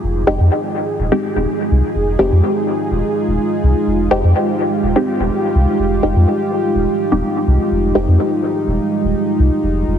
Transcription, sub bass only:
0, 0, Header, 1, 2, 480
1, 0, Start_track
1, 0, Key_signature, -4, "minor"
1, 0, Tempo, 480000
1, 30, Time_signature, 4, 2, 24, 8
1, 9986, End_track
2, 0, Start_track
2, 0, Title_t, "Sub bass"
2, 0, Program_c, 0, 38
2, 31, Note_on_c, 0, 29, 95
2, 234, Note_off_c, 0, 29, 0
2, 271, Note_on_c, 0, 29, 102
2, 378, Note_off_c, 0, 29, 0
2, 398, Note_on_c, 0, 41, 86
2, 492, Note_off_c, 0, 41, 0
2, 990, Note_on_c, 0, 27, 86
2, 1097, Note_off_c, 0, 27, 0
2, 1357, Note_on_c, 0, 27, 87
2, 1452, Note_off_c, 0, 27, 0
2, 1709, Note_on_c, 0, 36, 87
2, 1817, Note_off_c, 0, 36, 0
2, 1950, Note_on_c, 0, 29, 90
2, 2153, Note_off_c, 0, 29, 0
2, 2190, Note_on_c, 0, 29, 98
2, 2297, Note_off_c, 0, 29, 0
2, 2318, Note_on_c, 0, 41, 85
2, 2412, Note_off_c, 0, 41, 0
2, 2910, Note_on_c, 0, 27, 84
2, 3017, Note_off_c, 0, 27, 0
2, 3278, Note_on_c, 0, 27, 89
2, 3372, Note_off_c, 0, 27, 0
2, 3631, Note_on_c, 0, 36, 84
2, 3737, Note_off_c, 0, 36, 0
2, 3870, Note_on_c, 0, 29, 95
2, 4073, Note_off_c, 0, 29, 0
2, 4110, Note_on_c, 0, 29, 105
2, 4217, Note_off_c, 0, 29, 0
2, 4237, Note_on_c, 0, 41, 84
2, 4332, Note_off_c, 0, 41, 0
2, 4830, Note_on_c, 0, 27, 86
2, 4937, Note_off_c, 0, 27, 0
2, 5198, Note_on_c, 0, 27, 88
2, 5292, Note_off_c, 0, 27, 0
2, 5549, Note_on_c, 0, 36, 85
2, 5657, Note_off_c, 0, 36, 0
2, 5789, Note_on_c, 0, 29, 93
2, 5993, Note_off_c, 0, 29, 0
2, 6029, Note_on_c, 0, 29, 101
2, 6137, Note_off_c, 0, 29, 0
2, 6157, Note_on_c, 0, 41, 88
2, 6251, Note_off_c, 0, 41, 0
2, 6750, Note_on_c, 0, 27, 84
2, 6857, Note_off_c, 0, 27, 0
2, 7118, Note_on_c, 0, 27, 91
2, 7212, Note_off_c, 0, 27, 0
2, 7470, Note_on_c, 0, 36, 84
2, 7577, Note_off_c, 0, 36, 0
2, 7710, Note_on_c, 0, 29, 93
2, 7914, Note_off_c, 0, 29, 0
2, 7951, Note_on_c, 0, 29, 101
2, 8057, Note_off_c, 0, 29, 0
2, 8078, Note_on_c, 0, 41, 89
2, 8172, Note_off_c, 0, 41, 0
2, 8670, Note_on_c, 0, 27, 88
2, 8777, Note_off_c, 0, 27, 0
2, 9038, Note_on_c, 0, 27, 86
2, 9132, Note_off_c, 0, 27, 0
2, 9390, Note_on_c, 0, 36, 89
2, 9497, Note_off_c, 0, 36, 0
2, 9629, Note_on_c, 0, 29, 94
2, 9833, Note_off_c, 0, 29, 0
2, 9869, Note_on_c, 0, 29, 103
2, 9977, Note_off_c, 0, 29, 0
2, 9986, End_track
0, 0, End_of_file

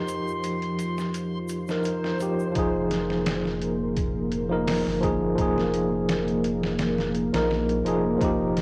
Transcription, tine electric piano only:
0, 0, Header, 1, 2, 480
1, 0, Start_track
1, 0, Key_signature, -4, "minor"
1, 0, Tempo, 705882
1, 1739, Time_signature, 4, 2, 24, 8
1, 5860, End_track
2, 0, Start_track
2, 0, Title_t, "Tine electric piano"
2, 0, Program_c, 0, 4
2, 0, Control_c, 0, 64, 127
2, 0, Note_on_c, 0, 53, 72
2, 0, Note_on_c, 0, 63, 70
2, 0, Note_on_c, 0, 67, 84
2, 0, Note_on_c, 0, 70, 75
2, 981, Note_off_c, 0, 53, 0
2, 992, Note_off_c, 0, 63, 0
2, 1003, Note_off_c, 0, 67, 0
2, 1145, Note_on_c, 0, 53, 80
2, 1154, Note_on_c, 0, 63, 70
2, 1163, Note_off_c, 0, 70, 0
2, 1163, Note_on_c, 0, 70, 86
2, 1472, Note_off_c, 0, 53, 0
2, 1476, Note_off_c, 0, 63, 0
2, 1480, Note_off_c, 0, 70, 0
2, 1492, Note_on_c, 0, 53, 75
2, 1502, Note_on_c, 0, 63, 64
2, 1512, Note_on_c, 0, 67, 85
2, 1705, Note_off_c, 0, 53, 0
2, 1713, Note_off_c, 0, 63, 0
2, 1713, Note_on_c, 0, 53, 82
2, 1719, Note_off_c, 0, 67, 0
2, 1737, Note_on_c, 0, 63, 77
2, 1747, Control_c, 0, 64, 0
2, 1758, Note_on_c, 0, 68, 96
2, 1868, Control_c, 0, 64, 127
2, 2899, Note_off_c, 0, 53, 0
2, 2911, Note_off_c, 0, 63, 0
2, 2922, Note_off_c, 0, 68, 0
2, 3055, Note_on_c, 0, 53, 84
2, 3068, Note_on_c, 0, 63, 81
2, 3076, Note_on_c, 0, 70, 93
2, 3387, Note_off_c, 0, 53, 0
2, 3393, Note_off_c, 0, 63, 0
2, 3397, Note_off_c, 0, 70, 0
2, 3407, Note_on_c, 0, 53, 85
2, 3420, Note_on_c, 0, 63, 71
2, 3430, Note_on_c, 0, 68, 86
2, 3626, Note_off_c, 0, 53, 0
2, 3632, Note_off_c, 0, 63, 0
2, 3638, Note_off_c, 0, 68, 0
2, 3640, Note_on_c, 0, 53, 85
2, 3661, Note_on_c, 0, 63, 77
2, 3684, Note_on_c, 0, 68, 88
2, 4823, Note_off_c, 0, 53, 0
2, 4833, Note_off_c, 0, 63, 0
2, 4845, Note_off_c, 0, 68, 0
2, 4983, Note_on_c, 0, 53, 81
2, 4992, Note_on_c, 0, 63, 80
2, 5003, Note_on_c, 0, 70, 92
2, 5311, Note_off_c, 0, 53, 0
2, 5315, Note_off_c, 0, 63, 0
2, 5321, Note_off_c, 0, 70, 0
2, 5339, Note_on_c, 0, 53, 86
2, 5346, Note_on_c, 0, 63, 74
2, 5359, Note_on_c, 0, 68, 90
2, 5552, Note_off_c, 0, 53, 0
2, 5556, Note_off_c, 0, 63, 0
2, 5562, Note_off_c, 0, 68, 0
2, 5563, Note_on_c, 0, 53, 85
2, 5587, Control_c, 0, 64, 0
2, 5587, Note_on_c, 0, 63, 79
2, 5606, Note_on_c, 0, 67, 96
2, 5707, Control_c, 0, 64, 127
2, 5860, Note_off_c, 0, 53, 0
2, 5860, Note_off_c, 0, 63, 0
2, 5860, Note_off_c, 0, 67, 0
2, 5860, End_track
0, 0, End_of_file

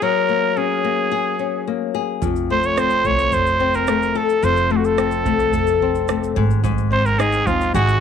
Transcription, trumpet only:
0, 0, Header, 1, 2, 480
1, 0, Start_track
1, 0, Tempo, 552486
1, 12, Time_signature, 4, 2, 24, 8
1, 6951, End_track
2, 0, Start_track
2, 0, Title_t, "Trumpet"
2, 0, Program_c, 0, 56
2, 25, Note_on_c, 0, 70, 85
2, 499, Note_on_c, 0, 68, 71
2, 512, Note_off_c, 0, 70, 0
2, 1455, Note_off_c, 0, 68, 0
2, 2182, Note_on_c, 0, 72, 84
2, 2309, Note_on_c, 0, 73, 80
2, 2322, Note_off_c, 0, 72, 0
2, 2423, Note_on_c, 0, 72, 82
2, 2436, Note_off_c, 0, 73, 0
2, 2660, Note_on_c, 0, 73, 85
2, 2673, Note_off_c, 0, 72, 0
2, 2900, Note_on_c, 0, 72, 85
2, 2913, Note_off_c, 0, 73, 0
2, 3262, Note_on_c, 0, 70, 76
2, 3275, Note_off_c, 0, 72, 0
2, 3622, Note_on_c, 0, 69, 74
2, 3635, Note_off_c, 0, 70, 0
2, 3858, Note_on_c, 0, 72, 88
2, 3871, Note_off_c, 0, 69, 0
2, 4097, Note_on_c, 0, 69, 69
2, 4110, Note_off_c, 0, 72, 0
2, 4139, Note_on_c, 0, 66, 58
2, 4152, Note_off_c, 0, 69, 0
2, 4219, Note_on_c, 0, 69, 72
2, 4232, Note_off_c, 0, 66, 0
2, 5534, Note_off_c, 0, 69, 0
2, 6012, Note_on_c, 0, 72, 93
2, 6132, Note_on_c, 0, 70, 84
2, 6145, Note_off_c, 0, 72, 0
2, 6245, Note_on_c, 0, 68, 87
2, 6258, Note_off_c, 0, 70, 0
2, 6485, Note_on_c, 0, 65, 81
2, 6498, Note_off_c, 0, 68, 0
2, 6722, Note_off_c, 0, 65, 0
2, 6727, Note_on_c, 0, 66, 91
2, 6951, Note_off_c, 0, 66, 0
2, 6951, End_track
0, 0, End_of_file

